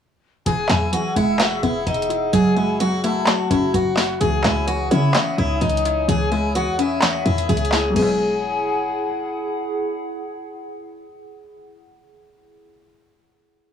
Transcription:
0.46 808-style bass E1, synth pluck E3, steel-string acoustic guitar G#4, ambient pad G#4 F#5 E6, flute G#5, closed hi-hat
0.69 808-style bass E2, synth pluck F#3, steel-string acoustic guitar E4, snare, clap, closed hi-hat
0.93 synth pluck E3, steel-string acoustic guitar F#4, closed hi-hat
1.16 808-style bass E1, synth pluck G#3, steel-string acoustic guitar E4, flute F#5, closed hi-hat
1.39 synth pluck E3, steel-string acoustic guitar F#4, flute E5, snare, clap, closed hi-hat
1.63 808-style bass E1, synth pluck B3, steel-string acoustic guitar E4
1.87 808-style bass E1, synth pluck E3, steel-string acoustic guitar D#4, closed hi-hat
1.94 closed hi-hat
2.02 closed hi-hat
2.10 synth pluck E4, closed hi-hat
2.33 808-style bass F#1, synth pluck F#3, ambient pad F#4 F#5, steel-string acoustic guitar G#4, flute G#5, closed hi-hat
2.56 synth pluck G#3, steel-string acoustic guitar E4
2.80 synth pluck F#3, steel-string acoustic guitar F#4, flute F#5, closed hi-hat
3.04 synth pluck A3, steel-string acoustic guitar E4, flute A5, closed hi-hat
3.26 synth pluck F#3, steel-string acoustic guitar F#4, snare, clap, closed hi-hat
3.51 808-style bass F#1, synth pluck C#4, steel-string acoustic guitar E4, closed hi-hat
3.74 808-style bass F#1, synth pluck F#3, steel-string acoustic guitar F#4, closed hi-hat
3.97 synth pluck F#4, snare, clap, open hi-hat
4.21 808-style bass C#2, synth pluck E3, steel-string acoustic guitar G#4, ambient pad C#5 G#5 D#6, flute G#5, closed hi-hat
4.44 808-style bass C#2, synth pluck G#3, steel-string acoustic guitar E4, snare, clap, closed hi-hat
4.68 synth pluck E3, steel-string acoustic guitar F#4, closed hi-hat
4.91 808-style bass C#3, synth pluck C#4, steel-string acoustic guitar E4, flute F#5, closed hi-hat
5.14 synth pluck E3, steel-string acoustic guitar F#4, flute E5, snare, clap, closed hi-hat
5.38 808-style bass C#2, synth pluck D#4, steel-string acoustic guitar E4
5.61 808-style bass C#2, synth pluck E3, steel-string acoustic guitar D#4, closed hi-hat
5.69 closed hi-hat
5.77 closed hi-hat
5.85 synth pluck E4, closed hi-hat
6.08 808-style bass C#2, synth pluck E3, steel-string acoustic guitar G#4, flute G#5, closed hi-hat
6.32 synth pluck G#3, steel-string acoustic guitar E4
6.55 synth pluck E3, steel-string acoustic guitar F#4, flute F#5, closed hi-hat
6.68 808-style bass E2
6.79 synth pluck C#4, steel-string acoustic guitar E4, flute E5, closed hi-hat
7.01 synth pluck E3, steel-string acoustic guitar F#4, snare, clap, closed hi-hat
7.25 808-style bass E2, synth pluck D#3, steel-string acoustic guitar E4, closed hi-hat
7.38 closed hi-hat
7.49 808-style bass C#2, synth pluck E3, steel-string acoustic guitar G#4, closed hi-hat
7.57 closed hi-hat
7.65 closed hi-hat
7.72 synth pluck E4, flute G#5, snare, clap, open hi-hat
7.90 synth pluck F#3
7.94 808-style bass E1, synth pluck G#3, ambient pad E4 G#4 F#5, steel-string acoustic guitar G#4, flute G#5, crash
7.98 synth pluck B3 E4

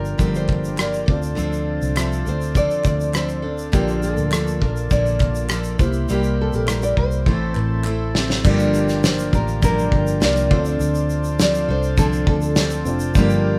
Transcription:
Already playing: fingered electric bass G1, steel-string acoustic guitar D3 F3 A#3 D4 G4, upright piano A#3 F4 G4 D5, harmonium F4 A#4 D5 G5, nylon-string guitar A#4
0.05 shaker
0.18 fingered electric bass G1, steel-string acoustic guitar G2 D3 F3 A#3 D4 G4, kick, shaker
0.35 nylon-string guitar C5, shaker
0.49 kick, clap
0.64 shaker
0.76 steel-string acoustic guitar F3 A#3 D4 G4, cross-stick, clap, shaker
0.81 nylon-string guitar D5
0.93 shaker
1.06 fingered electric bass D2, upright piano C4 F4 A4 D5, steel-string acoustic guitar C4 D4 A4, harmonium F4 C5 A5, kick
1.23 shaker
1.35 fingered electric bass D2, steel-string acoustic guitar D3 F3 C4 D4 A4, shaker
1.53 shaker
1.82 fingered electric bass C2, shaker
1.95 steel-string acoustic guitar F3 C4 D4 A4, upright piano C4 F4 A4 E5, cross-stick, clap, shaker
2.12 shaker
2.25 fingered electric bass D2, steel-string acoustic guitar C4 D4 A4, nylon-string guitar C5, shaker
2.41 shaker
2.54 steel-string acoustic guitar D3 F3 C4 D4 A4, nylon-string guitar D5, kick, shaker
2.71 shaker
2.84 fingered electric bass D2, nylon-string guitar D5, kick, clap, shaker
3.00 shaker
3.12 steel-string acoustic guitar F3 C4 D4 A4, nylon-string guitar C5, cross-stick, clap, shaker
3.29 shaker
3.42 steel-string acoustic guitar C4 D4 A4
3.58 shaker
3.72 fingered electric bass A#1, steel-string acoustic guitar A#2 D3 F3 A#3 D4 A4, harmonium A#3 F4 A5, upright piano A#3 F4 A4 D5, nylon-string guitar G4, kick, shaker
3.88 shaker
4.03 nylon-string guitar A4, shaker
4.17 fingered electric bass D2, shaker
4.30 steel-string acoustic guitar F3 A#3 D4 A4, upright piano A#3 F4 A4 D5, cross-stick, clap, shaker
4.47 shaker
4.60 fingered electric bass A#1, steel-string acoustic guitar F3 A#3 D4 A4, nylon-string guitar A#4, kick
4.76 shaker
4.91 fingered electric bass A#1, steel-string acoustic guitar A#2 D3 F3 A#3 D4 A4, nylon-string guitar D5, kick, shaker
5.06 shaker
5.20 kick, clap
5.35 shaker
5.49 steel-string acoustic guitar F3 A#3 D4 A4, cross-stick, clap, shaker
5.64 shaker
5.78 fingered electric bass C2, upright piano A#3 E4 G4 C5, harmonium E4 C5 G5, steel-string acoustic guitar E4 G4, kick, shaker
5.83 steel-string acoustic guitar A#3
5.93 shaker
6.09 fingered electric bass C2, steel-string acoustic guitar C3 G3 A#3 E4 G4, nylon-string guitar G4, shaker
6.23 shaker
6.41 nylon-string guitar A4
6.53 fingered electric bass A#1, nylon-string guitar G4, shaker
6.66 steel-string acoustic guitar G3 A#3 E4 G4, upright piano A#3 E4 G4 A#4, nylon-string guitar A#4, cross-stick, clap, shaker
6.83 nylon-string guitar D5, shaker
6.97 fingered electric bass C2, nylon-string guitar C5, kick
7.11 shaker
7.26 fingered electric bass A1, steel-string acoustic guitar A2 E3 A3 C4 E4 A4, upright piano A3 C4 E4 C5, harmonium A4 A5, kick
7.55 fingered electric bass A1, nylon-string guitar A#4, clap
7.84 steel-string acoustic guitar A3 C4 E4 A4, clap
8.15 steel-string acoustic guitar A3 C4 E4 A4, snare
8.30 snare
8.43 fingered electric bass G1, steel-string acoustic guitar G2 D3 F3 A#3 D4 G4, upright piano A#3 D4 F4 G4 D5, harmonium F4 A#4 D5 G5, kick, crash
8.59 shaker
8.74 shaker
8.88 snare, shaker
9.04 steel-string acoustic guitar F3 A#3 D4 G4, nylon-string guitar C5, snare, shaker
9.19 shaker
9.33 fingered electric bass A1, steel-string acoustic guitar F3 A#3 D4 G4, nylon-string guitar A#4, kick, shaker
9.48 shaker
9.62 steel-string acoustic guitar G2 D3 F3 A#3 D4 G4, nylon-string guitar A#4, kick, shaker
9.79 shaker
9.92 fingered electric bass G1, kick
10.07 shaker
10.20 fingered electric bass C2, steel-string acoustic guitar F3 A#3 D4 G4, nylon-string guitar D5, snare, shaker
10.36 shaker
10.50 fingered electric bass D2, steel-string acoustic guitar D3 F3 C4 D4 A4, upright piano C4 D4 F4 A4 C#5, harmonium C5 A5, kick
10.59 upright piano D5
10.65 shaker
10.80 fingered electric bass D2, shaker
10.95 shaker
11.10 shaker
11.24 shaker
11.39 steel-string acoustic guitar F3 C4 D4 A4, nylon-string guitar D5, snare, shaker
11.54 shaker
11.68 fingered electric bass C2, steel-string acoustic guitar C4 D4 A4, nylon-string guitar C5
11.83 shaker
11.98 steel-string acoustic guitar D3 F3 C4 D4 A4, nylon-string guitar A4, kick, shaker
12.13 shaker
12.27 fingered electric bass D2, nylon-string guitar A4, kick
12.41 shaker
12.56 steel-string acoustic guitar F3 C4 D4, snare, shaker
12.60 steel-string acoustic guitar A4
12.70 shaker
12.85 fingered electric bass F1, upright piano C4 D4 F4 A4 D5, shaker
13.00 shaker
13.14 fingered electric bass G1, steel-string acoustic guitar G2 D3 F3 A#3, upright piano A#3 D4 F4 G4 D5, harmonium A#4 G5, kick, shaker
13.18 steel-string acoustic guitar D4 G4
13.30 shaker

